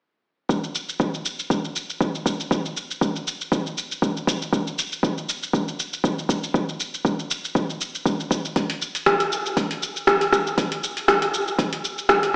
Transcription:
0.49 kick loud
0.49 shaker soft
0.64 shaker soft
0.75 shaker medium
0.89 shaker soft
1.00 kick loud
1.00 shaker soft
1.14 shaker soft
1.26 shaker medium
1.39 shaker soft
1.50 kick loud
1.50 shaker soft
1.65 shaker soft
1.76 shaker medium
1.90 shaker soft
2.01 kick loud
2.01 shaker soft
2.15 shaker soft
2.26 kick medium
2.26 shaker medium
2.40 shaker soft
2.51 kick loud
2.51 shaker soft
2.66 shaker soft
2.77 shaker medium
2.91 shaker soft
3.01 kick loud
3.01 shaker soft
3.16 shaker soft
3.27 shaker medium
3.41 shaker soft
3.52 kick loud
3.52 shaker soft
3.66 shaker soft
3.78 shaker medium
3.92 shaker soft
4.02 kick loud
4.02 shaker soft
4.17 shaker soft
4.27 kick medium
4.27 shaker medium
4.42 shaker soft
4.53 kick loud
4.53 shaker soft
4.67 shaker soft
4.79 shaker medium
4.92 shaker soft
5.03 kick loud
5.03 shaker soft
5.18 shaker soft
5.29 shaker medium
5.43 shaker soft
5.53 kick loud
5.53 shaker soft
5.68 shaker soft
5.80 shaker medium
5.93 shaker soft
6.04 kick loud
6.04 shaker soft
6.19 shaker soft
6.29 kick medium
6.29 shaker medium
6.44 shaker soft
6.54 kick loud
6.54 shaker soft
6.69 shaker soft
6.80 shaker medium
6.94 shaker soft
7.05 kick loud
7.05 shaker soft
7.19 shaker soft
7.31 shaker medium
7.45 shaker soft
7.55 kick loud
7.55 shaker soft
7.70 shaker soft
7.81 shaker medium
7.95 shaker soft
8.06 kick loud
8.06 shaker soft
8.20 shaker soft
8.31 kick medium
8.31 shaker medium
8.45 shaker soft
8.56 kick loud
8.56 closed hi-hat medium
8.56 shaker soft
8.70 closed hi-hat soft
8.70 shaker soft
8.82 shaker medium
8.95 closed hi-hat soft
8.95 shaker soft
9.06 kick loud
9.06 cross-stick medium
9.06 closed hi-hat medium
9.06 shaker soft
9.20 closed hi-hat soft
9.20 shaker soft
9.32 shaker medium
9.46 shaker soft
9.57 kick loud
9.57 closed hi-hat medium
9.57 shaker soft
9.71 closed hi-hat soft
9.71 shaker soft
9.83 shaker medium
9.96 shaker soft
10.07 kick loud
10.07 cross-stick medium
10.07 closed hi-hat medium
10.07 shaker soft
10.21 closed hi-hat soft
10.21 shaker soft
10.32 kick medium
10.32 cross-stick medium
10.32 shaker medium
10.47 shaker soft
10.58 kick loud
10.58 closed hi-hat medium
10.58 shaker soft
10.72 closed hi-hat soft
10.72 shaker soft
10.84 shaker medium
10.97 closed hi-hat soft
10.97 shaker soft
11.08 kick loud
11.08 cross-stick medium
11.08 closed hi-hat medium
11.08 shaker soft
11.22 closed hi-hat soft
11.22 shaker soft
11.34 shaker medium
11.48 shaker soft
11.59 kick loud
11.59 closed hi-hat medium
11.59 shaker soft
11.73 closed hi-hat soft
11.73 shaker soft
11.85 shaker medium
11.98 shaker soft
12.09 kick loud
12.09 cross-stick medium
12.09 closed hi-hat medium
12.09 shaker soft
12.23 closed hi-hat soft
12.23 shaker soft

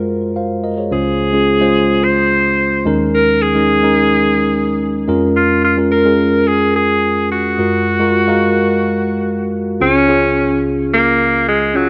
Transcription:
0.00 0.88 F#2 medium
0.00 0.91 G#3 medium
0.00 0.92 F4 medium
0.00 0.94 F#4 medium
0.00 0.64 A#4 medium
0.00 0.37 C5 medium
0.36 0.63 C5 soft
0.36 0.63 F5 medium
0.64 0.77 A#4 medium
0.64 0.77 D#5 medium
0.78 1.04 G#4 medium
0.78 1.04 C#5 medium
0.91 2.82 C#2 medium
0.91 2.82 C#3 medium
0.91 1.21 G#3 medium
0.91 1.21 C#4 medium
0.91 1.21 F4 medium
0.91 2.05 G#4 medium
0.91 1.22 C5 medium
1.33 1.53 G#3 medium
1.33 1.53 C#4 medium
1.33 1.53 F4 medium
1.33 1.54 G#4 medium
1.61 2.40 G#3 medium
1.61 2.40 C#4 medium
1.61 2.41 F4 medium
1.61 2.41 C5 loud
2.04 2.87 C5 loud
2.86 5.04 D#2 medium
2.86 5.04 D#3 medium
2.86 3.41 G#3 medium
2.86 3.42 C#4 medium
2.86 3.42 D#4 medium
2.86 3.42 A#4 loud
3.14 3.44 A#4 loud
3.42 5.09 G#4 loud
3.55 3.75 G#3 medium
3.55 3.76 C#4 medium
3.55 3.76 D#4 medium
3.55 3.76 A#4 medium
3.83 4.63 G#3 medium
3.83 4.63 C#4 medium
3.83 4.63 D#4 medium
3.83 4.63 A#4 medium
5.08 7.27 F2 medium
5.08 5.64 G#3 medium
5.08 5.64 C#4 medium
5.08 5.64 F4 medium
5.08 5.64 A#4 loud
5.37 5.62 F4 medium
5.64 5.77 F4 medium
5.77 5.97 G#3 medium
5.77 5.98 C#4 medium
5.77 5.98 F4 medium
5.77 5.98 A#4 medium
5.92 6.49 A#4 loud
6.05 6.85 G#3 medium
6.05 6.85 C#4 medium
6.05 6.85 F4 medium
6.05 6.85 G#4 medium
6.48 6.75 G#4 loud
6.76 7.27 G#4 loud
7.32 9.49 F#4 medium
7.58 9.77 F#2 medium
7.58 7.88 G#3 medium
7.58 7.88 F4 medium
7.58 7.88 F#4 medium
7.58 7.89 A#4 medium
8.00 8.20 G#3 medium
8.00 8.20 F4 medium
8.00 8.20 F#4 medium
8.00 8.20 A#4 medium
8.28 9.07 G#3 medium
8.28 9.08 F#4 medium
8.28 9.08 A#4 loud
8.28 9.07 F5 medium
9.80 11.89 C#2 medium
9.80 11.89 C#3 medium
9.80 10.00 C#4 medium
9.80 10.60 C#4 loud
9.80 10.01 F4 medium
9.80 10.01 G#4 medium
10.08 10.88 C#4 medium
10.08 10.88 F4 medium
10.08 10.88 G#4 medium
10.94 11.44 A#3 loud
11.48 11.78 G#3 loud
11.74 11.89 F#3 medium
11.74 11.89 C#4 medium
11.74 11.89 F4 medium
11.74 11.89 G#4 medium

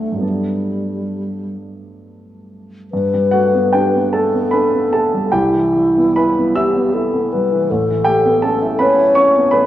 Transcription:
0.00 0.12 D2 soft
0.00 0.14 G3 soft
0.00 0.15 A3 soft
0.00 0.22 A3 soft
0.00 0.16 C4 soft
0.00 0.17 D4 soft
0.12 2.83 G2 soft
0.12 2.84 F#3 soft
0.18 2.85 A3 soft
0.18 2.87 B3 soft
0.22 1.56 G3 soft
0.22 2.88 D4 soft
2.91 5.29 G2 soft
2.91 4.09 B4 medium
3.14 3.46 G3 soft
3.31 3.66 A3 soft
3.31 3.71 F#4 soft
3.31 3.73 F#5 medium
3.55 3.86 B3 soft
3.73 4.06 D4 soft
3.73 4.11 G4 soft
3.73 4.13 G5 medium
3.96 4.26 B3 soft
4.13 4.45 A3 soft
4.13 5.34 A4 medium
4.13 4.50 A4 medium
4.13 4.52 A5 medium
4.34 4.65 B3 soft
4.51 4.84 D4 soft
4.51 4.89 B4 soft
4.51 4.91 B5 medium
4.74 5.05 B3 soft
4.93 5.25 A3 soft
4.93 5.30 A4 soft
4.93 5.32 A5 medium
5.14 5.33 G3 soft
5.32 7.65 C2 soft
5.32 6.57 E4 medium
5.32 6.11 G4 medium
5.32 6.15 G5 medium
5.55 5.87 E3 soft
5.76 6.08 G3 soft
5.98 6.29 B3 soft
6.16 6.48 E4 soft
6.16 6.53 B4 soft
6.16 6.55 B5 medium
6.38 6.68 B3 soft
6.55 6.87 E4 soft
6.55 6.95 G4 soft
6.55 7.65 E5 medium
6.55 7.69 E6 medium
6.76 7.06 B3 soft
6.93 7.24 E4 soft
6.93 7.33 A4 medium
7.14 7.43 B3 soft
7.32 7.62 G3 soft
7.32 7.71 B4 medium
7.53 7.70 E3 soft
7.70 9.66 A1 soft
7.70 8.80 A4 medium
7.90 8.18 E3 soft
8.04 8.35 A3 soft
8.04 8.40 G4 medium
8.04 8.42 G5 medium
8.25 8.54 B3 soft
8.42 8.72 C#4 soft
8.42 8.77 A4 medium
8.42 8.79 A5 medium
8.62 8.91 E4 soft
8.79 9.09 C#4 soft
8.79 9.14 B4 medium
8.79 9.62 C#5 medium
8.79 9.15 B5 medium
8.97 9.27 E4 soft
9.15 9.45 C#4 soft
9.15 9.50 C#5 medium
9.15 9.52 C#6 medium
9.36 9.64 B3 soft
9.51 9.66 A3 soft
9.51 9.66 B4 medium
9.51 9.66 B5 medium

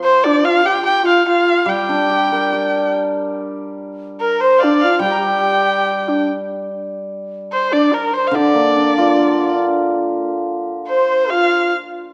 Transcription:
0.00 0.84 F3 medium
0.00 0.26 C5 medium
0.24 0.45 D4 medium
0.24 0.46 D5 medium
0.43 0.63 F4 medium
0.43 0.67 F5 medium
0.64 0.81 G4 medium
0.64 0.85 G5 medium
0.82 1.05 G4 medium
0.86 1.05 G5 medium
1.03 1.25 F4 medium
1.08 1.26 F5 medium
1.25 1.67 F4 medium
1.25 1.70 F5 medium
1.66 4.19 G3 medium
1.66 2.93 G4 medium
1.66 2.95 G5 medium
1.89 3.58 D4 soft
2.10 3.78 G4 soft
2.32 4.00 A#4 soft
2.53 4.20 D5 soft
4.20 4.39 A#4 medium
4.20 4.42 A#4 medium
4.41 4.60 C5 medium
4.41 4.65 C5 medium
4.59 4.82 D5 medium
4.59 4.61 F5 medium
4.63 4.85 D4 medium
4.81 5.03 F4 medium
4.81 5.01 F5 medium
4.99 7.49 G3 medium
4.99 5.12 G5 medium
5.04 5.16 G4 medium
5.11 6.25 G5 medium
5.11 5.15 A#5 medium
5.18 6.09 G4 medium
6.08 6.28 D4 medium
7.52 7.74 C5 medium
7.52 7.73 C5 medium
7.72 7.93 D4 medium
7.72 7.95 D5 medium
7.92 8.13 A#4 medium
7.92 8.15 A#4 medium
8.14 8.29 C5 medium
8.14 8.36 C5 medium
8.27 8.37 F5 medium
8.31 10.87 D3 medium
8.31 9.61 D4 medium
8.36 9.62 D5 medium
8.54 10.24 A#3 soft
8.76 10.46 D4 soft
8.98 10.68 F4 soft
9.19 10.89 A#4 soft
10.88 11.33 C5 medium
10.88 11.31 C5 medium
11.29 11.73 F4 medium
11.29 11.72 F5 medium

